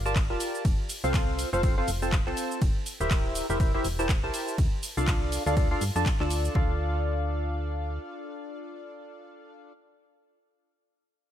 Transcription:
Already playing: G1
0.06 F4 G4 A#4 D5 A5, cabasa
0.16 kick, clap, ride, cabasa
0.30 D1 F4 G4 A#4 D5 A5
0.40 open hi-hat, cabasa
0.55 cabasa
0.65 F1, kick, ride, cabasa
0.89 open hi-hat, cabasa
1.04 C2 C4 F4 A4 C5 F5, cabasa
1.14 kick, clap, ride, cabasa
1.39 open hi-hat, cabasa
1.53 F1 C4 F4 A4 C5 F5, cabasa
1.63 C4 F4 A4 C5 F5, kick, ride, cabasa
1.78 C4 F4 A4 C5 F5
1.88 F1, open hi-hat, cabasa
2.02 C4 F4 A4 C5 A5, cabasa
2.12 kick, clap, ride, cabasa
2.27 C2 C4 F4 A4 C5 A5, clap
2.37 open hi-hat, cabasa
2.52 cabasa
2.62 E1, kick, ride, cabasa
2.86 open hi-hat, cabasa
3.00 D1 E4 G4 A#4 C5 E5, cabasa
3.11 kick, clap, ride, cabasa
3.35 open hi-hat, cabasa
3.50 E1 E4 G4 A#4 C5 E5, cabasa
3.60 E4 G4 A#4 C5 E5, kick, ride, cabasa
3.74 E4 G4 A#4 C5 E5
3.84 E1, open hi-hat, cabasa
3.99 E4 G4 A#4 C5 A5, cabasa
4.09 kick, clap, ride, cabasa
4.23 C2 E4 G4 A#4 C5 A5
4.34 open hi-hat, cabasa
4.48 cabasa
4.58 D2, kick, ride, cabasa
4.83 open hi-hat, cabasa
4.97 C2 D4 F4 A4 D5 F5, cabasa
5.08 kick, clap, ride, cabasa
5.32 open hi-hat, cabasa
5.46 D2 D4 F4 A4 D5 F5, cabasa
5.57 D4 F4 A4 D5 F5, kick, ride, cabasa
5.71 D4 F4 A4 D5 F5
5.81 G2, open hi-hat, cabasa
5.96 F2 D4 F4 A4 D5 A5, cabasa
6.06 kick, clap, ride, cabasa
6.20 D2 D4 F4 A4 D5 A5, clap
6.30 open hi-hat, cabasa
6.45 cabasa
6.55 D2 D4 F4 A4 D5 F5, kick

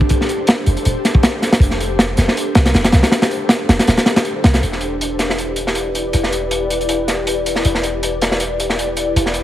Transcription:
0.01 kick
0.09 kick, closed hi-hat
0.21 snare
0.29 closed hi-hat
0.47 snare, closed hi-hat
0.66 F1, closed hi-hat
0.77 closed hi-hat
0.85 D1, closed hi-hat
1.05 snare, closed hi-hat
1.15 kick
1.23 snare, closed hi-hat
1.42 snare, closed hi-hat
1.52 snare, closed hi-hat
1.60 F1, kick, closed hi-hat
1.70 snare
1.80 closed hi-hat
1.99 snare, closed hi-hat
2.17 F1, snare, closed hi-hat
2.28 snare
2.37 closed hi-hat
2.55 C2, snare, closed hi-hat
2.66 snare, closed hi-hat
2.74 F1, snare, closed hi-hat
2.84 snare, closed hi-hat
2.92 C2, snare, closed hi-hat
3.03 snare, closed hi-hat
3.12 snare, closed hi-hat
3.22 snare, closed hi-hat
3.31 closed hi-hat
3.49 snare, closed hi-hat
3.69 F1, snare, closed hi-hat
3.79 snare, closed hi-hat
3.87 D1, snare, closed hi-hat
3.97 snare, closed hi-hat
4.06 snare, closed hi-hat
4.16 snare, closed hi-hat
4.25 closed hi-hat
4.44 C2, snare, closed hi-hat
4.54 snare, closed hi-hat
4.63 E1 E4 G4 B4 D5, closed hi-hat
4.72 snare
4.81 closed hi-hat
5.01 closed hi-hat
5.19 snare, closed hi-hat
5.30 snare
5.38 closed hi-hat
5.56 closed hi-hat
5.67 snare
5.75 closed hi-hat
5.95 closed hi-hat
6.13 E1, closed hi-hat
6.23 snare
6.33 closed hi-hat
6.51 closed hi-hat
6.70 closed hi-hat
6.81 closed hi-hat
6.89 closed hi-hat
7.08 snare, closed hi-hat
7.27 closed hi-hat
7.46 closed hi-hat
7.56 snare
7.65 E1 E4 G4 B4 D5, closed hi-hat
7.75 snare
7.83 closed hi-hat
8.03 closed hi-hat
8.21 snare, closed hi-hat
8.31 snare
8.40 closed hi-hat
8.60 closed hi-hat
8.70 snare
8.79 closed hi-hat
8.97 closed hi-hat
9.16 E1, closed hi-hat
9.26 snare
9.34 closed hi-hat

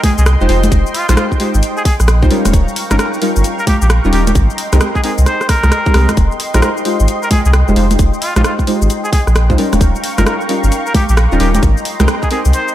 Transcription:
Already playing: G#3 D#4 F4 G4 C5 D#5 G5 C6
0.03 G#4, kick, open hi-hat, high conga
0.18 C2 G#4, shaker
0.26 cross-stick, closed hi-hat, shaker
0.41 F1 G#3 D#4 F4 G4 C5, shaker
0.49 F1 G#3 D#4 F4 G4 C5, open hi-hat
0.64 closed hi-hat, high conga, shaker
0.72 F1, kick, closed hi-hat, shaker
0.86 shaker
0.94 F4, open hi-hat
1.09 A#1 G#3 D#4 F4 G4 C5, cross-stick, closed hi-hat, high conga, shaker
1.17 F4, cross-stick, closed hi-hat, shaker
1.32 kick, shaker
1.40 G#3 D#4 F4 G4 C5, open hi-hat
1.55 G#1, shaker
1.63 closed hi-hat, shaker
1.77 G#4, shaker
1.85 G#4, kick, open hi-hat
2.00 A#1, cross-stick, shaker
2.08 cross-stick, closed hi-hat, shaker
2.23 C2 G#3 D#4 F4 G4 C5, kick, shaker
2.31 G3 C#4 D#4 F4 A#4 F5 A#5 C#6, open hi-hat
2.45 D#1, cross-stick, closed hi-hat, high conga, shaker
2.53 D#1, kick, closed hi-hat, shaker
2.68 shaker
2.76 open hi-hat
2.90 G1 G3 C#4 D#4 F4 A#4, cross-stick, closed hi-hat, high conga, shaker
2.99 A#4, cross-stick, closed hi-hat, shaker
3.14 shaker
3.22 G3 C#4 D#4 F4 A#4, open hi-hat
3.36 G1, shaker
3.44 closed hi-hat, shaker
3.59 A#4, shaker
3.67 G4, kick, open hi-hat, high conga
3.82 A#1 G4, shaker
3.90 cross-stick, closed hi-hat, shaker
4.05 D#1 G3 C#4 D#4 F4 A#4, shaker
4.12 D#1 G3 C#4 D#4 F4 G4 A#4, open hi-hat
4.27 G4, closed hi-hat, high conga, shaker
4.35 G#1 D#5 G5 C6, kick, closed hi-hat, shaker
4.50 shaker
4.58 open hi-hat
4.73 C2 G#3 C4 D#4 G4 A#4, cross-stick, closed hi-hat, high conga, shaker
4.81 cross-stick, closed hi-hat, shaker
4.95 G#4, kick, shaker
5.04 G#3 C4 D#4 G4 G#4 A#4, open hi-hat
5.18 C2, shaker
5.26 C5, cross-stick, closed hi-hat, shaker
5.41 cross-stick, shaker
5.49 A#4, kick, cross-stick, open hi-hat
5.63 C2, cross-stick, closed hi-hat, high conga, shaker
5.72 cross-stick, closed hi-hat, shaker
5.86 G#3 C4 D#4 G4 A#4, kick, shaker
5.94 C2 G#3 C4 D#4 G4 A#4, cross-stick, open hi-hat
6.09 cross-stick, closed hi-hat, high conga, shaker
6.17 F1, kick, closed hi-hat, shaker
6.32 shaker
6.40 open hi-hat
6.54 A#1 G#3 D#4 F4 G4 A#4 C5, cross-stick, closed hi-hat, high conga, shaker
6.62 A#4, cross-stick, closed hi-hat, shaker
6.77 shaker
6.85 G#3 D#4 F4 G4 C5, open hi-hat
7.00 G#1, shaker
7.08 closed hi-hat, shaker
7.23 A#4, shaker
7.31 G#4, kick, open hi-hat, high conga
7.45 C2 G#4, shaker
7.53 cross-stick, closed hi-hat, shaker
7.68 F1 G#3 D#4 F4 G4 C5, shaker
7.76 F1 G#3 D#4 F4 G4 C5, open hi-hat
7.91 closed hi-hat, high conga, shaker
7.99 F1, kick, closed hi-hat, shaker
8.13 shaker
8.22 F4, open hi-hat
8.36 A#1 G#3 D#4 F4 G4 C5, cross-stick, closed hi-hat, high conga, shaker
8.44 F4, cross-stick, closed hi-hat, shaker
8.59 kick, shaker
8.67 G#3 D#4 F4 G4 C5, open hi-hat
8.82 G#1, shaker
8.90 closed hi-hat, shaker
9.04 G#4, shaker
9.13 G#4, kick, open hi-hat
9.27 A#1, cross-stick, shaker
9.36 cross-stick, closed hi-hat, shaker
9.50 C2 G#3 D#4 F4 G4 C5, kick, shaker
9.58 G3 C#4 D#4 F4 A#4 F5 A#5 C#6, open hi-hat
9.73 D#1, cross-stick, closed hi-hat, high conga, shaker
9.81 D#1, kick, closed hi-hat, shaker
9.95 shaker
10.04 open hi-hat
10.18 G1 G3 C#4 D#4 F4 A#4, cross-stick, closed hi-hat, high conga, shaker
10.26 A#4, cross-stick, closed hi-hat, shaker
10.41 shaker
10.49 G3 C#4 D#4 F4 A#4, open hi-hat
10.64 G1, shaker
10.72 closed hi-hat, shaker
10.86 A#4, shaker
10.94 G4, kick, open hi-hat, high conga
11.09 A#1 G4, shaker
11.17 cross-stick, closed hi-hat, shaker
11.32 D#1 G3 C#4 D#4 F4 A#4, shaker
11.40 D#1 G3 C#4 D#4 F4 G4 A#4, open hi-hat
11.55 G4, closed hi-hat, high conga, shaker
11.63 G#1 D#5 C6, kick, closed hi-hat, shaker
11.77 shaker
11.85 open hi-hat
12.00 C2 G#3 C4 D#4 G4 A#4, cross-stick, closed hi-hat, high conga, shaker
12.08 cross-stick, closed hi-hat, shaker
12.22 G#4, kick, shaker
12.31 G#3 C4 D#4 G4 G#4 A#4, open hi-hat
12.45 C2, shaker
12.53 C5, closed hi-hat, shaker
12.68 shaker

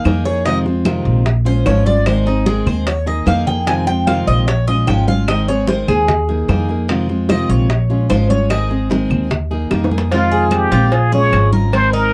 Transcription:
Already playing: F5
0.04 F2 D#3 A#3 D#4 G#4, high bongo, low bongo, high conga, claves
0.25 A#3 D#4 G#4 C#5, high bongo, high conga
0.45 C3 D#3 G#3 C4 F4 D#5, high bongo, high conga
0.65 G#3 C4 F4, high bongo, high conga
0.85 C3 D#3 G#3 C4 F4, high bongo, high conga, claves
1.05 A#1
1.26 muted steel-string acoustic guitar stroke, high bongo, high conga
1.45 G#3 C#4 F4 C5, high bongo, high conga
1.66 G#1 F3 G#3 C#4 F4 C#5, high bongo, low bongo, high conga, claves
1.86 G#3 C#4 F4 D5, high bongo, high conga
2.06 D#3 G#3 C4 G#4 C5, high bongo, high conga, claves
2.26 G#3 C4 D#4 G#4, high bongo, high conga
2.46 D#3 G#3 C4 G#4, high bongo, high conga
2.66 D#2 C5, high conga, low conga, claves
2.87 C#5, muted steel-string acoustic guitar stroke, high bongo, high conga
3.06 A#3 D#4 G#4 D#5, high bongo, high conga
3.26 F2 D#3 A#3 D#4 G#4 F5, high bongo, low bongo, high conga, claves
3.46 A#3 D#4 G#4 G5, high bongo, low conga
3.66 C3 D#3 G#3 C4 F4 G#5, high bongo, high conga
3.86 G#3 C4 F4 G5, high bongo, high conga
4.07 C3 D#3 G#3 C4 F4 F5, high bongo, high conga, claves
4.27 A#1 D#5
4.48 C#5, muted steel-string acoustic guitar stroke, high bongo, high conga
4.67 G#3 C#4 F4 D#5, high bongo, high conga
4.87 G#1 F3 G#3 C#4 F4 G5, high bongo, low bongo, high conga, claves
5.08 G#3 C#4 F4 F5, high bongo, high conga
5.28 D#3 G#3 C4 G#4 D#5, high bongo, claves
5.48 G#3 C4 G#4 C#5, high bongo, high conga
5.67 D#3 G#3 C4 G#4 C5, high bongo, high conga
5.88 D#2 G#4, high conga, low conga, claves
6.08 muted steel-string acoustic guitar stroke, high bongo, high conga, low conga
6.29 A#3 D#4 G#4, high bongo, high conga
6.48 F2 D#3 A#3 D#4 G#4, high bongo, low bongo, high conga, claves
6.68 A#3 D#4 G#4, high bongo, high conga
6.88 C3 D#3 G#3 C4 F4, high bongo, high conga
7.09 G#3 C4 F4, high bongo, high conga
7.29 C3 D#3 G#3 C4 F4 D#5, high bongo, high conga, claves
7.49 A#1 C#5
7.70 muted steel-string acoustic guitar stroke, high bongo, high conga
7.90 G#3 C#4 F4, high bongo, high conga
8.10 G#1 F3 G#3 C#4 F4 C5, high bongo, low bongo, high conga, claves
8.30 G#3 C#4 F4 C#5, high bongo, high conga
8.50 D#3 G#3 C4 G#4 D#5, high bongo, claves
8.70 G#3 C4 G#4, high bongo, high conga
8.90 D#3 G#3 C4 G#4, high bongo, high conga
9.10 D#2, high conga, low conga, claves
9.31 muted steel-string acoustic guitar stroke, high bongo, high conga, low conga
9.51 A#3 D#4 G#4, high bongo, high conga
9.71 F2 D#3 A#3 D#4 G#4, high bongo, high conga, claves
9.84 low bongo
9.91 A#3 D#4 G#4, high conga
9.98 low bongo
10.11 C3 D#3 G#3 C4 F4, cowbell, high conga
10.31 G#4, high conga
10.51 G4, cowbell, high conga, claves
10.71 A#1 D#3 G#3 C4 F4, cowbell
10.92 G#4, muted steel-string acoustic guitar stroke, cowbell, high conga
11.12 G#3 C#4 F4 G#4 C#5, high conga
11.32 G#1 F3 G#3 C#4 F4, cowbell, high conga, claves
11.53 A#4, high conga
11.72 D#3 G#3 C4 G#4 C5, cowbell, high conga, claves
11.93 D#4 A#4, high conga

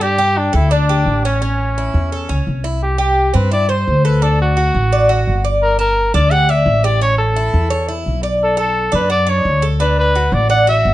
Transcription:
Already playing: G2
0.01 D4 G4
0.18 G4
0.38 D4
0.53 D2 E4 A4
0.71 D4
0.89 G4
1.06 A1
1.25 C#4
1.42 C#4
1.78 E4
1.94 E2
2.12 A4
2.29 C#2 C#4
2.47 C2
2.64 E4
2.83 G4
2.98 G4
3.34 G2 C4 B4
3.52 E4 D5
3.69 C5
3.88 D2
4.05 A4 B4
4.22 D4 A4
4.42 F#4
4.57 F#4
4.75 A1
4.92 D5
5.09 F#4
5.27 G1
5.45 D5
5.62 A#4
5.79 A#4 A5
6.14 D2 D4 D5
6.31 G4 F#5
6.49 D5 E5
6.66 A1
6.84 G4 D5
7.01 C#4 C#5
7.18 A4
7.36 E4
7.54 E2
7.70 C#5
7.88 E4
8.06 B1
8.23 D5
8.43 A4
8.57 A4
8.92 F#2 D4 B4
9.10 F#4 D5
9.27 D4 C#5
9.45 D2
9.62 A4
9.80 D4 B4
9.99 B4
10.15 F#4
10.32 A1 D5
10.50 D5 F#5
10.67 F#4 E5
10.85 G1

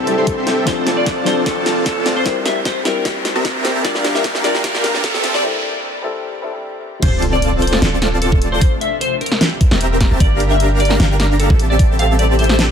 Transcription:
Already playing: G3 A3 C4 E4 G4 A4 E5 A5, riser
0.06 G3 C4 E4 A4, closed hi-hat
0.17 G3 C4 E4 G4 A4 E5 C6
0.27 kick, closed hi-hat
0.37 C4 G4 A4 E5 C6
0.47 C4 G4 A4 E5 G5, snare, closed hi-hat
0.65 F3 C4 D4 F4 A4 C5 D5 A5, kick, snare, closed hi-hat
0.87 snare, closed hi-hat
0.97 D5
1.06 kick, snare, closed hi-hat
1.24 F3 C4 D4 C5, snare, closed hi-hat
1.28 A4
1.46 C4 F4 A4 D5 A5, kick, snare, closed hi-hat
1.66 snare, closed hi-hat
1.86 A4, kick, snare, closed hi-hat
1.96 C4 F4 A4 D5 A5
2.06 snare, closed hi-hat
2.16 C5
2.24 G3 A#3 C4 E4 A#4, kick, snare, closed hi-hat
2.45 E5, snare, closed hi-hat
2.65 C5, kick, snare, closed hi-hat
2.83 G3 C4 E4 A#4, snare, closed hi-hat
3.05 kick, snare, closed hi-hat
3.25 snare, closed hi-hat
3.36 C4 G4 A#4 E5 A#5
3.45 kick, snare, closed hi-hat
3.65 snare, closed hi-hat
3.75 C4 G4 A#4 E5 A5
3.83 G3 D4 F4 A#4 D5 F5, kick, snare, closed hi-hat
3.87 A#4
3.95 snare
4.04 snare, closed hi-hat
4.15 E5, snare
4.24 kick, snare, closed hi-hat
4.35 snare
4.42 G3 D4 F4 D5, snare, closed hi-hat
4.46 A#4
4.55 snare
4.64 D4 G4 A#4 F5, kick, snare, closed hi-hat
4.75 snare
4.84 snare, closed hi-hat
4.94 snare
5.04 A4, kick, snare, closed hi-hat
5.14 C4 G4 A4 E5 A5, snare
5.24 snare, closed hi-hat
5.34 D5, snare
5.42 G3 C4 E4 A4
6.02 G3 C4 E4 A4
6.42 G3 C4 E4 A4
6.52 G3 C4 E4 A4
7.02 D1 C3 C4 F4 A4 C5 D5 A5, kick, closed hi-hat, crash, impact
7.22 closed hi-hat
7.33 D5
7.42 closed hi-hat
7.62 C5, closed hi-hat
7.67 closed hi-hat
7.73 snare
7.82 D1 C4 F4 A4 D5 A5, snare, closed hi-hat
8.02 snare, closed hi-hat
8.22 A4, closed hi-hat
8.32 D1, kick
8.42 closed hi-hat
8.52 C5
8.61 A#3, kick, closed hi-hat
8.81 E5, closed hi-hat
9.01 C5, closed hi-hat
9.21 A#4, closed hi-hat
9.26 closed hi-hat
9.32 snare
9.41 snare, closed hi-hat
9.61 kick, closed hi-hat
9.71 E1 C4 G4 A#4 E5 A#5, snare
9.81 closed hi-hat
10.01 kick, snare, closed hi-hat
10.11 E1 C4 G4 A#4 E5 A5
10.20 G1 G3 D5, kick, closed hi-hat
10.40 closed hi-hat
10.51 E5
10.60 closed hi-hat
10.80 D5, closed hi-hat
10.85 closed hi-hat
10.90 snare
11.00 G1 D4 G4 A#4 F5 A#5, snare, closed hi-hat
11.20 snare, closed hi-hat
11.40 A4, closed hi-hat
11.50 A1, kick
11.59 C3 A3 E4 G4, closed hi-hat
11.70 D5
11.79 kick, closed hi-hat
11.99 F5, closed hi-hat
12.19 D5, closed hi-hat
12.39 C5, closed hi-hat
12.44 closed hi-hat
12.49 snare
12.59 snare, closed hi-hat

